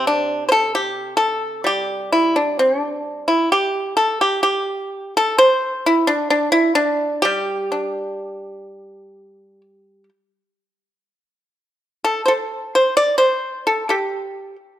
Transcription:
0.00 2.61 C3 medium
0.07 0.43 D4 medium
0.49 0.73 A4 medium
0.49 0.51 C5 medium
0.75 1.16 G4 medium
1.17 1.62 A4 medium
1.64 4.50 G3 medium
1.64 2.11 G4 medium
2.12 2.35 E4 medium
2.36 2.58 D4 medium
2.59 2.79 C4 medium
2.79 3.27 D4 medium
3.28 3.52 E4 medium
3.52 3.96 G4 medium
3.97 4.21 A4 medium
4.21 4.42 G4 medium
4.43 5.13 G4 medium
5.17 5.38 A4 medium
5.38 5.84 C5 loud
5.86 6.10 E4 medium
6.07 6.29 D4 medium
6.30 6.52 D4 medium
6.52 6.75 E4 loud
6.75 7.20 D4 medium
7.22 10.09 G3 medium
7.22 10.03 G4 loud
7.72 9.61 D4 soft
12.04 12.21 A4 medium
12.26 12.73 A4 medium
12.26 12.31 C5 medium
12.75 12.96 C5 medium
12.97 13.17 D5 loud
13.18 13.63 C5 medium
13.67 13.83 A4 medium
13.89 14.56 G4 medium
13.89 13.94 A4 medium

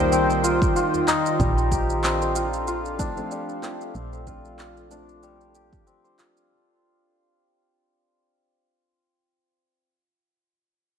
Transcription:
0.00 0.70 C2 loud
0.00 1.36 D#3 medium
0.00 1.37 D#3 medium
0.00 1.38 G3 medium
0.00 0.26 A#3 medium
0.00 1.38 A#3 medium
0.00 0.12 C4 medium
0.00 1.07 D#4 loud
0.00 0.44 F4 medium
0.00 1.71 G4 medium
0.00 0.29 C5 medium
0.00 1.36 C5 medium
0.00 1.39 D5 medium
0.00 1.36 G5 medium
0.12 2.03 C4 medium
0.12 shaker soft
0.30 2.21 C5 medium
0.30 shaker soft
0.44 0.76 F4 medium
0.44 shaker medium
0.62 kick loud
0.62 shaker soft
0.76 2.35 F4 medium
0.76 shaker soft
0.94 djembe tone soft
0.94 shaker soft
1.08 3.05 D#4 loud
1.08 clap medium
1.08 djembe slap medium
1.08 shaker medium
1.26 shaker soft
1.40 3.26 A#1 medium
1.40 3.30 G3 medium
1.40 6.47 D4 medium
1.40 6.47 A4 medium
1.40 6.47 F5 medium
1.40 kick loud
1.40 shaker soft
1.58 shaker soft
1.71 3.62 G4 medium
1.71 kick medium
1.71 shaker medium
1.90 shaker soft
2.04 3.95 C4 medium
2.04 clap medium
2.04 shaker soft
2.21 4.13 C5 medium
2.21 shaker soft
2.35 2.67 F4 medium
2.35 shaker medium
2.53 shaker soft
2.68 4.27 F4 medium
2.68 shaker soft
2.85 shaker soft
2.98 3.09 F3 medium
2.98 3.10 A3 medium
2.98 3.10 C4 medium
2.98 4.91 D4 loud
2.98 3.10 D4 medium
2.98 kick loud
2.98 shaker medium
3.16 3.59 F3 medium
3.16 3.60 A3 medium
3.16 3.60 C4 medium
3.16 3.60 D4 medium
3.16 shaker soft
3.31 5.22 G3 medium
3.31 shaker soft
3.49 shaker soft
3.62 3.91 F3 medium
3.62 3.92 A3 medium
3.62 3.92 C4 medium
3.62 3.92 D4 medium
3.62 5.55 G4 medium
3.62 clap medium
3.62 shaker medium
3.81 shaker soft
3.94 5.81 A#1 loud
3.94 4.23 F3 medium
3.94 4.24 A3 medium
3.94 5.86 C4 medium
3.94 4.24 C4 medium
3.94 4.24 D4 medium
3.94 shaker soft
4.13 6.04 C5 medium
4.13 shaker soft
4.26 4.87 F3 medium
4.26 4.87 A3 medium
4.26 4.88 C4 medium
4.26 4.88 D4 medium
4.26 4.59 F4 medium
4.26 kick medium
4.26 shaker medium
4.45 shaker soft
4.59 6.18 F4 medium
4.59 clap medium
4.59 shaker soft
4.77 shaker soft
4.89 6.48 F3 medium
4.89 6.48 A3 medium
4.89 6.49 C4 medium
4.89 8.64 D4 medium
4.89 shaker medium
4.93 6.50 D4 medium
5.09 shaker soft
5.23 6.55 G3 medium
5.23 shaker soft
5.41 shaker soft
5.55 8.69 G4 medium
5.55 shaker medium
5.73 kick loud
5.73 shaker soft
5.87 9.87 C4 medium
5.87 shaker soft
6.04 8.68 C5 medium
6.04 shaker soft
6.18 9.55 F4 medium
6.18 clap medium
6.18 shaker medium
6.37 shaker soft

